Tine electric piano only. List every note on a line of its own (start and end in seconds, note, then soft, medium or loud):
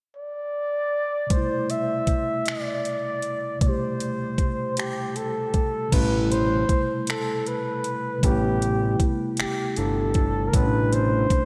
1.27 3.55 C3 soft
1.27 3.57 G3 soft
1.32 3.59 B2 soft
1.32 3.58 A3 soft
1.37 3.60 E4 medium
3.59 5.87 C3 medium
3.59 5.88 G3 soft
3.64 5.91 B2 soft
3.64 5.89 A3 soft
3.69 5.92 G4 medium
5.88 8.17 C3 medium
5.88 8.18 G3 medium
5.93 8.21 B2 soft
5.93 8.19 A3 soft
5.99 8.22 E4 medium
8.19 10.47 C3 medium
8.19 10.49 G3 soft
8.24 10.50 A3 medium
8.24 10.51 B3 soft
8.29 10.53 E4 medium
10.49 11.45 C3 medium
10.49 11.45 G3 soft
10.54 11.45 B2 medium
10.54 11.45 A3 soft
10.60 10.63 C#4 soft
10.66 11.45 D4 medium